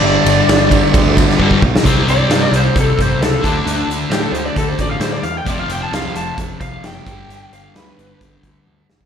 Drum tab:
RD |--x-x-x-x-x-----|----------------|----------------|----------------|
HH |----------------|x-x-x-x-x-x-x-x-|x-x-x-x-x-x-x-x-|x-x-x-x-x-x-x-x-|
SD |----o------o---o|----o-------o---|----o-------o---|----o-------o---|
T1 |----------------|----------------|----------------|----------------|
BD |------o-o-o-ooo-|o-------o-o---o-|--------o-o-----|o-------o-o---o-|

RD |----------------|
HH |x-x-x-x-x-x-----|
SD |----o---------o-|
T1 |------------o---|
BD |--------o-o----o|